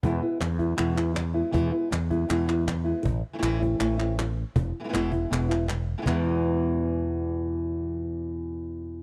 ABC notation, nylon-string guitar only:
X:1
M:4/4
L:1/8
Q:1/4=159
K:E
V:1 name="Nylon-string guitar"
[B,,E,G,B,E] [G,B,E] z [G,B,E] [B,,E,G,B,E] [G,B,E] z [G,B,E] | [B,,E,G,B,E] [G,B,E] z [G,B,E] [B,,E,G,B,E] [G,B,E] z [G,B,E] | z2 [E,A,=CE] [A,CE] [E,A,CE] [A,CE] z2 | z2 [B,,E,G,B,E] [G,B,E] [B,,E,G,B,E] [G,B,E] z2 |
[E,,B,,E,G,B,E]8- | [E,,B,,E,G,B,E]8 |]